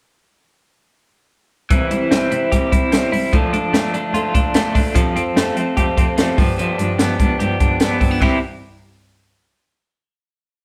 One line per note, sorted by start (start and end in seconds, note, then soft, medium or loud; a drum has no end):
1.70 1.79 C2 medium
1.70 1.91 C3 medium
1.70 1.91 E3 medium
1.70 1.91 G3 medium
1.70 1.91 C4 medium
1.70 1.89 E4 medium
1.70 kick loud
1.70 closed hi-hat medium
1.90 1.99 C2 medium
1.90 2.10 G3 soft
1.90 2.10 C4 medium
1.90 2.10 E4 medium
1.90 closed hi-hat medium
2.10 2.19 C2 medium
2.10 2.31 C3 medium
2.10 2.31 E3 medium
2.10 2.31 G3 medium
2.10 2.31 C4 medium
2.10 2.30 E4 medium
2.10 snare loud
2.10 closed hi-hat medium
2.31 2.39 C3 medium
2.31 2.51 G3 soft
2.31 2.52 C4 medium
2.31 2.51 E4 medium
2.31 closed hi-hat medium
2.52 2.60 C2 medium
2.52 2.72 E3 medium
2.52 2.72 G3 medium
2.52 2.72 C4 soft
2.52 2.71 E4 medium
2.52 3.37 G4 medium
2.52 kick medium
2.52 closed hi-hat medium
2.72 2.80 C2 medium
2.72 2.92 G3 soft
2.72 2.92 C4 medium
2.72 2.92 E4 medium
2.72 kick medium
2.72 closed hi-hat medium
2.92 3.00 C2 loud
2.92 3.12 C3 medium
2.92 3.13 E3 medium
2.92 3.13 G3 medium
2.92 3.13 C4 medium
2.92 3.11 E4 medium
2.92 snare loud
2.92 closed hi-hat medium
3.12 3.20 C2 medium
3.12 3.33 G3 soft
3.12 3.33 C4 soft
3.12 3.33 E4 soft
3.12 open hi-hat medium
3.33 3.41 D2 medium
3.33 3.53 D3 medium
3.33 4.95 F3 medium
3.33 3.54 A3 medium
3.33 3.54 D4 medium
3.33 3.53 F4 medium
3.33 3.52 A4 medium
3.33 kick loud
3.33 closed hi-hat medium
3.52 3.60 D2 medium
3.52 3.73 D4 soft
3.52 3.73 F4 soft
3.52 3.74 A4 medium
3.52 closed hi-hat medium
3.73 3.81 D2 medium
3.73 3.94 D3 medium
3.73 3.94 A3 medium
3.73 3.94 D4 medium
3.73 3.94 F4 medium
3.73 3.93 A4 medium
3.73 snare loud
3.73 closed hi-hat medium
3.93 4.01 D3 medium
3.93 4.14 D4 soft
3.93 4.14 F4 soft
3.93 4.14 A4 medium
3.93 closed hi-hat medium
4.14 4.22 D2 medium
4.14 4.34 A3 medium
4.14 4.35 D4 medium
4.14 4.34 F4 medium
4.14 4.33 A4 medium
4.14 closed hi-hat medium
4.34 4.43 D2 medium
4.34 4.54 D4 soft
4.34 4.54 F4 soft
4.34 4.54 A4 medium
4.34 kick medium
4.34 closed hi-hat medium
4.54 4.63 D2 medium
4.54 4.75 D3 medium
4.54 4.75 A3 medium
4.54 4.75 D4 medium
4.54 4.74 F4 medium
4.54 4.73 A4 medium
4.54 snare loud
4.54 closed hi-hat medium
4.74 4.83 D2 loud
4.74 4.95 D4 soft
4.74 4.95 F4 soft
4.74 4.95 A4 medium
4.74 kick medium
4.74 open hi-hat medium
4.95 5.04 F2 medium
4.95 5.16 F3 medium
4.95 5.16 G3 medium
4.95 5.16 C4 medium
4.95 5.16 F4 medium
4.95 5.14 A4 medium
4.95 kick loud
4.95 closed hi-hat medium
5.15 5.23 F2 medium
5.15 5.36 C4 soft
5.15 5.36 F4 soft
5.15 5.36 A4 medium
5.15 closed hi-hat medium
5.36 5.44 F2 loud
5.36 5.57 F3 medium
5.36 5.57 G3 medium
5.36 6.17 A3 medium
5.36 5.57 C4 medium
5.36 5.56 F4 medium
5.36 5.56 A4 medium
5.36 snare loud
5.36 closed hi-hat medium
5.56 5.64 F3 medium
5.56 5.77 C4 soft
5.56 5.77 F4 medium
5.56 5.77 A4 medium
5.56 closed hi-hat medium
5.77 5.85 F2 loud
5.77 5.97 G3 medium
5.77 5.97 C4 medium
5.77 5.97 F4 medium
5.77 6.61 G4 medium
5.77 5.96 A4 medium
5.77 kick medium
5.77 closed hi-hat medium
5.97 6.05 F2 medium
5.97 6.16 C4 soft
5.97 6.16 F4 medium
5.97 6.17 A4 medium
5.97 kick medium
5.97 closed hi-hat medium
6.16 6.26 F2 medium
6.16 6.38 F3 medium
6.16 6.38 G3 medium
6.16 6.42 A3 medium
6.16 6.38 C4 medium
6.16 6.37 F4 medium
6.16 6.36 A4 medium
6.16 snare loud
6.16 closed hi-hat medium
6.37 6.46 G2 loud
6.37 6.57 F3 soft
6.37 6.57 B3 soft
6.37 6.58 D4 soft
6.37 6.58 G4 medium
6.37 kick medium
6.37 open hi-hat medium
6.58 6.79 G2 medium
6.58 6.79 D3 medium
6.58 6.79 F3 medium
6.58 6.78 B3 medium
6.58 6.78 D4 medium
6.58 6.77 G4 medium
6.58 closed hi-hat medium
6.78 6.87 G2 medium
6.78 6.98 F3 soft
6.78 6.98 B3 soft
6.78 6.98 D4 soft
6.78 6.98 G4 medium
6.78 closed hi-hat medium
6.98 7.19 G2 medium
6.98 7.07 G2 medium
6.98 7.19 D3 medium
6.98 7.20 F3 medium
6.98 7.20 B3 medium
6.98 7.19 D4 medium
6.98 7.18 G4 medium
6.98 snare loud
6.98 closed hi-hat medium
7.19 7.38 F3 soft
7.19 7.27 G3 medium
7.19 7.39 B3 medium
7.19 7.40 D4 soft
7.19 7.40 G4 medium
7.19 kick medium
7.19 closed hi-hat medium
7.39 7.48 G2 loud
7.39 7.60 F3 medium
7.39 7.60 B3 medium
7.39 7.59 D4 medium
7.39 7.59 G4 medium
7.39 closed hi-hat medium
7.60 7.69 G2 medium
7.60 7.79 F3 soft
7.60 7.80 B3 soft
7.60 7.80 D4 medium
7.60 7.80 G4 medium
7.60 kick medium
7.60 closed hi-hat medium
7.80 7.88 G2 medium
7.80 8.01 G2 medium
7.80 8.01 D3 medium
7.80 8.01 F3 medium
7.80 8.00 B3 medium
7.80 8.00 D4 medium
7.80 7.99 G4 medium
7.80 snare loud
7.80 closed hi-hat medium
8.00 8.09 G2 medium
8.00 8.21 F3 soft
8.00 8.21 B3 soft
8.00 8.11 C4 medium
8.00 8.22 D4 medium
8.00 8.21 G4 medium
8.00 kick medium
8.00 open hi-hat medium
8.11 8.22 D4 soft
8.20 8.30 C2 medium
8.20 8.37 C3 medium
8.20 8.38 E3 medium
8.20 8.38 G3 medium
8.20 8.38 C4 medium
8.20 8.39 E4 medium
8.20 8.39 G4 medium
8.20 kick medium
8.20 crash medium